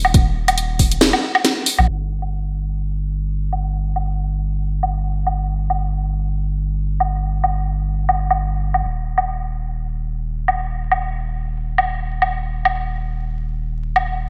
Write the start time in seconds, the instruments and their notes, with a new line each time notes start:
Already playing: sub bass D#1
0.05 low woodblock
0.14 sub bass D#1, kick, closed hi-hat
0.48 closed hi-hat, low woodblock
0.58 closed hi-hat
0.79 kick, open hi-hat
0.92 closed hi-hat
1.01 snare, closed hi-hat
1.13 low woodblock
1.35 low woodblock
1.45 snare, closed hi-hat
1.66 open hi-hat
1.78 sub bass A#1, low woodblock
2.22 low woodblock
3.53 low woodblock
3.96 low woodblock
4.83 low woodblock
5.27 low woodblock
5.70 low woodblock
7.00 low woodblock
7.44 low woodblock
8.09 low woodblock
8.31 low woodblock
8.74 low woodblock
8.84 sub bass D#1
9.18 low woodblock
10.48 low woodblock
10.91 low woodblock
11.78 low woodblock
12.22 low woodblock
12.65 low woodblock
13.96 low woodblock